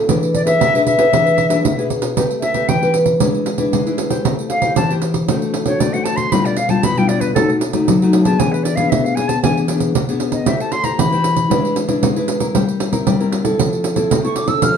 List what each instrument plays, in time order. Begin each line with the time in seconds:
0.08 nylon-string guitar E3 D4 G#4 B4, pandeiro
0.23 pandeiro
0.34 flute D5, pandeiro
0.45 nylon-string guitar D4 G#4 B4, flute E5, pandeiro
0.60 nylon-string guitar B2, pandeiro
0.74 nylon-string guitar D4 G#4 B4, pandeiro
0.86 flute E5, pandeiro
0.98 nylon-string guitar D4 G#4 B4, pandeiro
1.12 nylon-string guitar E3 D4 G#4 B4, pandeiro
1.27 pandeiro
1.38 pandeiro
1.49 nylon-string guitar D4 G#4 B4, pandeiro
1.64 nylon-string guitar B2, pandeiro
1.78 nylon-string guitar D4 G#4 B4, pandeiro
1.90 pandeiro
2.02 pandeiro
2.16 nylon-string guitar A3 C4 G4 B4, pandeiro
2.31 pandeiro
2.41 flute E5, pandeiro
2.54 nylon-string guitar C4 G4 B4, pandeiro
2.69 nylon-string guitar E3, flute G5, pandeiro
2.82 nylon-string guitar C4 G4 B4, pandeiro
2.94 pandeiro
3.06 pandeiro
3.20 nylon-string guitar G#3 D4 E4 B4, pandeiro
3.34 pandeiro
3.46 pandeiro
3.58 nylon-string guitar D4 E4 B4, pandeiro
3.73 nylon-string guitar G#3, pandeiro
3.86 nylon-string guitar D4 E4 B4, pandeiro
3.98 pandeiro
4.10 nylon-string guitar E4 G4 C5, pandeiro
4.25 nylon-string guitar A3, pandeiro
4.39 pandeiro
4.49 flute F5, pandeiro
4.62 nylon-string guitar E4 G4 C5, pandeiro
4.76 nylon-string guitar E3, flute A5, pandeiro
4.90 nylon-string guitar E4 G4 C5, pandeiro
5.02 pandeiro
5.14 pandeiro
5.28 nylon-string guitar A3 D4 F#4 C5, pandeiro
5.42 pandeiro
5.54 pandeiro
5.65 nylon-string guitar D4 F#4 C5, flute C#5, pandeiro
5.80 nylon-string guitar A3, flute D5, pandeiro
5.93 nylon-string guitar D4 F#4 C5, flute F#5, pandeiro
6.04 flute A5, pandeiro
6.17 flute C6, pandeiro
6.32 nylon-string guitar B2 G3 D4 F4, flute B5, pandeiro
6.45 flute D5, pandeiro
6.57 flute F5, pandeiro
6.69 nylon-string guitar G3 D4 F4, flute A5, pandeiro
6.83 nylon-string guitar B2, flute B5, pandeiro
6.97 nylon-string guitar G3 D4 F4, flute G5, pandeiro
7.08 flute D5, pandeiro
7.21 flute B4, pandeiro
7.34 nylon-string guitar B2 A3 D#4 F#4, flute A4, pandeiro
7.50 pandeiro
7.61 pandeiro
7.73 nylon-string guitar A3 D#4 F#4, pandeiro
7.88 nylon-string guitar F#3, pandeiro
8.02 nylon-string guitar A3 D#4 F#4, pandeiro
8.13 pandeiro
8.24 nylon-string guitar B3 D4 G#4, flute A5, pandeiro
8.39 nylon-string guitar E3, flute G#5, pandeiro
8.52 flute B4, pandeiro
8.64 flute D5, pandeiro
8.76 nylon-string guitar B3 D4 G#4, flute F5, pandeiro
8.90 nylon-string guitar B2, flute E5, pandeiro
9.04 flute F5, pandeiro
9.15 nylon-string guitar B3 D4 G#4, flute G#5, pandeiro
9.28 flute A5, pandeiro
9.43 nylon-string guitar E3 B3 D4 G#4, flute G#5, pandeiro
9.57 pandeiro
9.68 nylon-string guitar B3 D4 G#4, pandeiro
9.80 pandeiro
9.95 nylon-string guitar B2, pandeiro
10.09 nylon-string guitar B3 D4 G#4, pandeiro
10.20 pandeiro
10.32 flute D#5, pandeiro
10.46 nylon-string guitar A3 E4 G4 C5, flute E5, pandeiro
10.60 flute A5, pandeiro
10.72 flute C6, pandeiro
10.84 nylon-string guitar E4 G4 C5, flute A#5, pandeiro
10.98 nylon-string guitar E3, flute B5, pandeiro
11.12 nylon-string guitar E4 G4 C5, pandeiro
11.24 pandeiro
11.37 pandeiro
11.50 nylon-string guitar G#3 D4 E4 B4, pandeiro
11.65 pandeiro
11.76 pandeiro
11.88 nylon-string guitar D4 E4 B4, pandeiro
12.02 nylon-string guitar G#3, pandeiro
12.16 nylon-string guitar D4 E4 B4, pandeiro
12.28 pandeiro
12.40 nylon-string guitar C4 E4 A#4, pandeiro
12.54 nylon-string guitar G3, pandeiro
12.69 pandeiro
12.80 pandeiro
12.92 nylon-string guitar C4 E4 A#4, pandeiro
13.06 nylon-string guitar G3, pandeiro
13.20 nylon-string guitar C4 E4 A#4, pandeiro
13.32 pandeiro
13.44 nylon-string guitar C4 E4 A4, pandeiro
13.58 nylon-string guitar F3, pandeiro
13.73 pandeiro
13.84 pandeiro
13.96 nylon-string guitar C4 E4 A4, pandeiro
14.10 nylon-string guitar C3, pandeiro
14.24 nylon-string guitar C4 E4 A4, flute C#6, pandeiro
14.36 flute D6, pandeiro
14.47 nylon-string guitar C4 D4 A4, flute E6, pandeiro
14.62 nylon-string guitar F3, flute F6, pandeiro